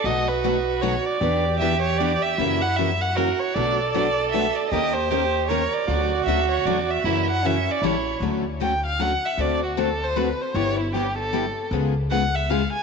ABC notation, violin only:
X:1
M:3/4
L:1/16
Q:"Swing" 1/4=154
K:Bm
V:1 name="Violin"
^d2 B6 c2 =d2- | d4 e2 c2 d2 e2- | e2 f2 e2 f2 ^A2 c2 | d4 d4 e2 d2 |
^d2 ^B6 c2 =d2- | d4 e2 c2 d2 e2- | e2 f2 e2 d2 c3 z | [K:D] z4 g2 =f2 ^f2 e2 |
d2 F2 A2 =c2 B2 c2 | c2 E2 G2 A6 | z4 f2 e2 ^e2 ^g2 |]